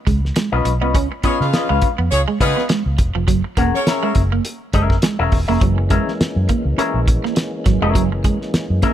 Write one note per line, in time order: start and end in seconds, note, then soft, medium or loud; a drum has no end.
0.07 0.30 C#2 medium
0.07 0.19 G#3 medium
0.07 kick loud
0.07 closed hi-hat medium
0.25 snare soft
0.36 0.49 G#3 medium
0.36 snare loud
0.36 closed hi-hat medium
0.52 0.63 B1 medium
0.52 0.71 C#4 medium
0.52 0.71 F4 medium
0.52 0.71 B4 medium
0.52 0.71 D#5 medium
0.65 0.82 B1 medium
0.65 muted clean electric guitar stroke soft
0.65 closed hi-hat medium
0.81 0.95 C2 medium
0.81 0.91 B3 medium
0.81 0.96 C#4 soft
0.81 0.95 F4 medium
0.81 0.95 B4 medium
0.81 0.95 D#5 medium
0.95 1.08 C#2 medium
0.95 1.07 C#4 medium
0.95 kick loud
0.95 closed hi-hat medium
1.12 muted clean electric guitar stroke soft
1.23 1.36 B3 medium
1.23 1.44 C#4 medium
1.23 1.37 C#4 medium
1.23 1.37 F4 medium
1.23 1.44 F4 medium
1.23 1.37 G#4 medium
1.23 1.45 B4 medium
1.23 1.37 C#5 medium
1.23 1.45 D#5 medium
1.23 muted fingered electric bass stroke soft
1.23 kick medium
1.23 closed hi-hat medium
1.40 1.51 C#3 medium
1.40 1.80 F4 medium
1.40 1.80 G#4 medium
1.40 1.80 B4 medium
1.40 1.80 F5 medium
1.40 snare soft
1.53 1.69 C#4 medium
1.53 1.69 F4 medium
1.53 1.68 B4 medium
1.53 1.69 D#5 medium
1.53 snare loud
1.53 closed hi-hat medium
1.69 1.80 C#2 medium
1.69 1.79 G#3 medium
1.69 1.88 C#4 medium
1.69 1.88 F4 medium
1.69 1.87 B4 medium
1.69 1.87 F5 medium
1.82 muted clean electric guitar stroke soft
1.82 kick medium
1.82 closed hi-hat medium
1.98 2.09 F2 medium
1.98 2.08 B3 medium
2.11 2.24 C#2 medium
2.11 2.21 C#4 medium
2.11 2.21 F4 medium
2.11 2.21 G#4 medium
2.11 2.21 C#5 medium
2.11 closed hi-hat medium
2.28 2.37 G#3 medium
2.40 2.54 C#3 medium
2.40 2.64 B3 loud
2.40 2.61 C#4 medium
2.40 2.64 F4 medium
2.40 2.61 F4 medium
2.40 2.64 G#4 loud
2.40 2.64 B4 loud
2.40 2.61 B4 medium
2.40 2.61 D#5 loud
2.40 muted clean electric guitar stroke soft
2.40 kick medium
2.40 closed hi-hat medium
2.56 2.66 B3 medium
2.56 snare soft
2.69 2.82 G#3 medium
2.69 snare loud
2.69 closed hi-hat medium
2.86 2.96 C#2 loud
2.98 3.12 E1 medium
2.98 muted clean electric guitar stroke soft
2.98 kick loud
2.98 closed hi-hat medium
3.15 3.28 F1 medium
3.15 3.25 F3 medium
3.28 3.41 F#1 loud
3.28 3.40 F#3 medium
3.28 kick loud
3.28 closed hi-hat medium
3.44 muted clean electric guitar stroke soft
3.57 3.70 E1 medium
3.57 3.69 A#3 medium
3.57 3.78 C#4 medium
3.57 3.78 G#4 medium
3.57 3.78 A#4 medium
3.57 3.78 F#5 medium
3.57 kick medium
3.57 closed hi-hat medium
3.74 4.13 C#4 medium
3.74 4.13 G#4 medium
3.74 4.13 A#4 medium
3.74 4.13 C#5 medium
3.74 snare soft
3.87 4.03 C#4 medium
3.87 4.03 G#4 medium
3.87 4.03 A#4 medium
3.87 4.02 E5 medium
3.87 snare loud
3.87 closed hi-hat medium
4.03 4.12 G#3 medium
4.03 4.22 C#4 medium
4.03 4.21 G#4 medium
4.03 4.21 A#4 medium
4.03 4.21 E5 medium
4.15 4.39 F#1 loud
4.15 muted clean electric guitar stroke soft
4.15 kick loud
4.15 closed hi-hat medium
4.32 4.42 A#3 medium
4.45 closed hi-hat medium
4.73 4.97 F#1 medium
4.73 4.87 G#3 medium
4.73 4.95 C#4 medium
4.73 4.95 G#4 medium
4.73 4.95 A#4 medium
4.73 4.95 E5 medium
4.73 kick medium
4.73 closed hi-hat medium
4.90 kick medium
4.90 snare soft
5.02 5.16 G#3 medium
5.02 snare loud
5.02 closed hi-hat loud
5.19 5.30 E1 medium
5.19 5.38 C#4 medium
5.19 5.38 G#4 medium
5.19 5.37 A#4 medium
5.19 5.37 E5 medium
5.32 5.45 E1 medium
5.32 muted clean electric guitar stroke soft
5.32 kick loud
5.32 open hi-hat medium
5.48 5.59 F1 medium
5.48 5.58 A#3 medium
5.48 5.62 C#4 medium
5.48 5.62 G#4 medium
5.48 5.62 A#4 medium
5.48 5.62 E5 medium
5.61 5.97 F#1 loud
5.61 8.93 E3 medium
5.61 5.74 F#3 medium
5.61 8.93 G#3 medium
5.61 8.93 A#3 medium
5.61 8.93 C#4 medium
5.61 kick loud
5.61 closed hi-hat medium
5.78 muted clean electric guitar stroke soft
5.90 6.03 G#3 medium
5.90 6.11 C#4 medium
5.90 6.11 G#4 medium
5.90 6.11 A#4 medium
5.90 6.11 E5 medium
5.90 kick medium
5.90 closed hi-hat medium
6.08 snare soft
6.21 muted fingered electric bass stroke soft
6.21 snare loud
6.21 closed hi-hat medium
6.36 6.46 F#2 loud
6.49 6.61 A#3 medium
6.49 kick medium
6.49 closed hi-hat medium
6.65 6.75 C#2 medium
6.78 6.98 C#4 medium
6.78 6.91 C#4 medium
6.78 6.99 G#4 medium
6.78 6.99 A#4 medium
6.78 6.99 E5 medium
6.78 closed hi-hat medium
6.94 7.17 A#1 medium
7.08 muted clean electric guitar stroke soft
7.08 kick loud
7.08 closed hi-hat medium
7.24 7.34 A#3 medium
7.24 snare soft
7.36 muted clean electric guitar stroke soft
7.36 snare loud
7.36 closed hi-hat medium
7.66 7.79 G#1 medium
7.66 7.78 F#3 medium
7.66 kick medium
7.66 snare soft
7.66 closed hi-hat medium
7.82 7.95 F1 medium
7.82 7.92 G#3 medium
7.82 8.01 C#4 medium
7.82 8.01 G#4 medium
7.82 8.01 A#4 medium
7.82 8.01 E5 medium
7.95 8.31 F#1 medium
7.95 8.08 F#3 medium
7.95 kick loud
7.95 closed hi-hat medium
8.12 muted clean electric guitar stroke soft
8.24 8.37 G#3 medium
8.24 kick medium
8.24 closed hi-hat medium
8.41 snare soft
8.54 muted fingered electric bass stroke soft
8.54 snare loud
8.54 closed hi-hat medium
8.70 8.80 F#2 loud
8.82 8.93 A#3 medium
8.82 8.93 C#4 medium
8.82 8.93 G#4 medium
8.82 8.93 A#4 loud
8.82 8.93 E5 medium
8.82 kick loud
8.82 closed hi-hat medium